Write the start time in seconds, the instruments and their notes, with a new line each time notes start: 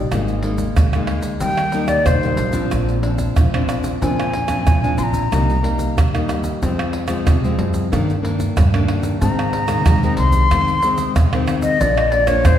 0.11 upright bass G#1, nylon-string guitar G#2 G#3 A#3 D#4, pandeiro, tamborim, shaker, surdo
0.28 pandeiro, shaker
0.43 nylon-string guitar G#3 A#3 D#4, pandeiro
0.58 pandeiro, shaker, surdo
0.77 upright bass D2, pandeiro, tamborim, shaker, surdo
0.93 nylon-string guitar G#3 A#3 D#4, pandeiro, tamborim, shaker
1.07 pandeiro, tamborim
1.22 pandeiro, shaker, surdo
1.41 upright bass D#2, nylon-string guitar D#3 G3 A#3 D#4, flute G5, pandeiro, shaker, surdo
1.57 pandeiro, tamborim, shaker
1.72 nylon-string guitar G3 A#3 D#4, pandeiro, shaker
1.88 flute D5, pandeiro, tamborim, shaker, surdo
2.06 nylon-string guitar A#2, upright bass D#3, flute C5, pandeiro, tamborim, shaker, surdo
2.23 nylon-string guitar G3 A#3 D#4, pandeiro, shaker
2.37 upright bass A#1, pandeiro, shaker
2.53 nylon-string guitar F3 C4 D4, pandeiro, shaker, surdo
2.71 upright bass A#1, nylon-string guitar A#2, pandeiro, tamborim, shaker, surdo
2.89 pandeiro, shaker
3.02 nylon-string guitar F3 C4 D4, pandeiro
3.18 pandeiro, shaker, surdo
3.36 upright bass A#1, nylon-string guitar F3, pandeiro, tamborim, shaker, surdo
3.54 nylon-string guitar F3 C4 D4, pandeiro, tamborim, shaker
3.69 pandeiro, tamborim, shaker
3.84 pandeiro, shaker, surdo
4.01 upright bass F2, nylon-string guitar A#2 F3 C4 D4, flute G#5, pandeiro, shaker, surdo
4.20 pandeiro, tamborim, shaker
4.33 pandeiro
4.48 nylon-string guitar F3 C4 D4, pandeiro, tamborim, shaker, surdo
4.66 upright bass A#2, nylon-string guitar F3, pandeiro, tamborim, shaker, surdo
4.83 nylon-string guitar F3 C4 D4, pandeiro, shaker
4.98 upright bass A#1, flute C6, pandeiro, shaker
5.03 flute A#5
5.14 pandeiro, shaker, surdo
5.32 upright bass C2, nylon-string guitar C3 G3 A#3 D#4, pandeiro, tamborim, shaker, surdo
5.50 pandeiro, shaker
5.63 nylon-string guitar G3 A#3 D#4, pandeiro, surdo
5.79 pandeiro, shaker, surdo
5.96 upright bass D#2, nylon-string guitar G2, pandeiro, tamborim, shaker, surdo
6.14 nylon-string guitar G3 A#3 D#4, pandeiro, tamborim, shaker
6.29 pandeiro, tamborim, shaker
6.44 pandeiro, shaker, surdo
6.62 nylon-string guitar F2 F3 G#3 C4, upright bass F2, pandeiro, shaker, surdo
6.79 pandeiro, tamborim, shaker
6.93 pandeiro
7.08 nylon-string guitar F3 G#3 C4, pandeiro, tamborim, shaker, surdo
7.27 nylon-string guitar C3, upright bass F3, pandeiro, tamborim, shaker, surdo
7.44 nylon-string guitar F3 G#3 C4, pandeiro, shaker
7.58 upright bass F#2, pandeiro
7.74 pandeiro, shaker, surdo
7.92 nylon-string guitar G2 D#3 A#3 D4, upright bass G2, pandeiro, tamborim, shaker, surdo
8.10 pandeiro, shaker
8.22 nylon-string guitar D#3 A#3 D4, pandeiro, surdo
8.40 pandeiro, shaker, surdo
8.56 nylon-string guitar G2, upright bass G2, pandeiro, tamborim, shaker, surdo
8.74 nylon-string guitar D#3 A#3 D4, pandeiro, tamborim, shaker
8.88 pandeiro, tamborim
9.03 pandeiro, shaker, surdo
9.21 upright bass G#2, nylon-string guitar G#2 D#3 G#3 C4, flute A#5, pandeiro, shaker, surdo
9.39 pandeiro, tamborim, shaker
9.53 pandeiro
9.68 nylon-string guitar D#3 G#3 C4, pandeiro, tamborim, shaker, surdo
9.86 nylon-string guitar D#3, upright bass G#3, pandeiro, tamborim, shaker, surdo
10.03 nylon-string guitar D#3 G#3 C4, pandeiro, shaker
10.17 upright bass C2, flute C6, pandeiro
10.32 pandeiro, shaker, surdo
10.51 upright bass F2, nylon-string guitar F2 D#3 G#3 C4, pandeiro, tamborim, shaker, surdo
10.68 pandeiro, shaker
10.82 nylon-string guitar D#3 G#3 C4, pandeiro, shaker
10.98 pandeiro, shaker, surdo
11.16 upright bass F2, nylon-string guitar C3, pandeiro, tamborim, shaker, surdo
11.33 nylon-string guitar D#3 G#3 C4, pandeiro, tamborim, shaker
11.47 pandeiro, tamborim, shaker
11.62 flute D#5, pandeiro, shaker, surdo
11.80 upright bass A#1, nylon-string guitar A#2 F3 A#3 D4, flute D5, pandeiro, shaker, surdo
11.97 flute D#5, pandeiro, tamborim, shaker
12.11 flute D5, pandeiro
12.27 nylon-string guitar F3 A#3 D4, flute C#5, pandeiro, tamborim, shaker, surdo
12.45 nylon-string guitar F2, upright bass A#2, flute C5, pandeiro, tamborim, shaker, surdo